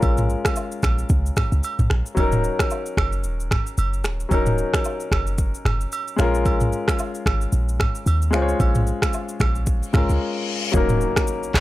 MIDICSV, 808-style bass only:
0, 0, Header, 1, 2, 480
1, 0, Start_track
1, 0, Key_signature, -6, "minor"
1, 0, Tempo, 535714
1, 25, Time_signature, 4, 2, 24, 8
1, 10395, End_track
2, 0, Start_track
2, 0, Title_t, "808-style bass"
2, 0, Program_c, 0, 38
2, 24, Note_on_c, 0, 34, 107
2, 320, Note_off_c, 0, 34, 0
2, 745, Note_on_c, 0, 34, 92
2, 932, Note_off_c, 0, 34, 0
2, 984, Note_on_c, 0, 37, 101
2, 1172, Note_off_c, 0, 37, 0
2, 1363, Note_on_c, 0, 37, 94
2, 1442, Note_off_c, 0, 37, 0
2, 1604, Note_on_c, 0, 34, 90
2, 1683, Note_off_c, 0, 34, 0
2, 1706, Note_on_c, 0, 34, 94
2, 1815, Note_off_c, 0, 34, 0
2, 1945, Note_on_c, 0, 27, 107
2, 2241, Note_off_c, 0, 27, 0
2, 2664, Note_on_c, 0, 30, 88
2, 2905, Note_on_c, 0, 27, 107
2, 2919, Note_off_c, 0, 30, 0
2, 3201, Note_off_c, 0, 27, 0
2, 3386, Note_on_c, 0, 30, 94
2, 3625, Note_on_c, 0, 27, 95
2, 3638, Note_off_c, 0, 30, 0
2, 3812, Note_off_c, 0, 27, 0
2, 3864, Note_on_c, 0, 27, 103
2, 4161, Note_off_c, 0, 27, 0
2, 4584, Note_on_c, 0, 30, 94
2, 4959, Note_off_c, 0, 30, 0
2, 5065, Note_on_c, 0, 30, 91
2, 5252, Note_off_c, 0, 30, 0
2, 5545, Note_on_c, 0, 34, 100
2, 6028, Note_off_c, 0, 34, 0
2, 6505, Note_on_c, 0, 32, 85
2, 6692, Note_off_c, 0, 32, 0
2, 6743, Note_on_c, 0, 34, 98
2, 7040, Note_off_c, 0, 34, 0
2, 7225, Note_on_c, 0, 39, 95
2, 7466, Note_on_c, 0, 37, 94
2, 7479, Note_off_c, 0, 39, 0
2, 7653, Note_off_c, 0, 37, 0
2, 7705, Note_on_c, 0, 34, 104
2, 8001, Note_off_c, 0, 34, 0
2, 8424, Note_on_c, 0, 34, 89
2, 8799, Note_off_c, 0, 34, 0
2, 8906, Note_on_c, 0, 37, 95
2, 9014, Note_off_c, 0, 37, 0
2, 9046, Note_on_c, 0, 37, 94
2, 9124, Note_off_c, 0, 37, 0
2, 9624, Note_on_c, 0, 27, 112
2, 9920, Note_off_c, 0, 27, 0
2, 10343, Note_on_c, 0, 30, 89
2, 10395, Note_off_c, 0, 30, 0
2, 10395, End_track
0, 0, End_of_file